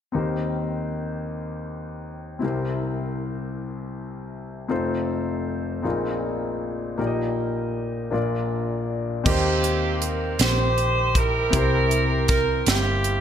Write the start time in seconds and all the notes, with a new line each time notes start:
0.12 D#2 D#3 C4 D#4 G4 A#4
0.18 C5
2.39 C2 C3 C4 E4 G4
2.44 A#4 C5
4.68 F1 F2 C4 D#4 F4 A4 C5
5.83 A#1 A#2 C4 D#4 F4 G#4 A#4
6.98 A#1 A#2 A#3 D#4 G4 A#4 D5
7.07 D#5
8.11 A#1 A#2 A#3 D4 F4 A#4 D5
9.24 D#2 D#3 C4 G4 A#4 D#5, kick, crash
9.28 A#3 C5
9.64 closed hi-hat
10.02 A#4, closed hi-hat
10.39 A#1 G4 C5, snare, closed hi-hat
10.78 closed hi-hat
11.15 E4 G4 A#4, kick, closed hi-hat
11.50 C2 C3 C4 E4 G4, kick, closed hi-hat
11.55 A#4 C5
11.91 closed hi-hat
12.28 A#4, kick, snare, closed hi-hat
12.66 G1 A#3 E4 G4, snare, closed hi-hat
13.04 closed hi-hat